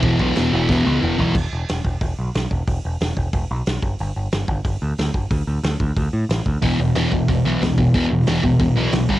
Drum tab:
CC |x-x-----|x-------|--------|--------|
HH |--------|--o-o-o-|o-o-o-o-|o-o-o-o-|
SD |--o-o---|--o---o-|--o---o-|--o---o-|
T1 |-----o--|--------|--------|--------|
T2 |------o-|--------|--------|--------|
FT |-------o|--------|--------|--------|
BD |oo--o---|o--oo--o|o--oo--o|---oo--o|

CC |--------|--------|--------|
HH |o-o-o-o-|o-o-o-o-|o-o-o-o-|
SD |--o---o-|--o---o-|--o---o-|
T1 |--------|--------|--------|
T2 |--------|--------|--------|
FT |--------|--------|--------|
BD |o--oo--o|o--oo--o|o--oo--o|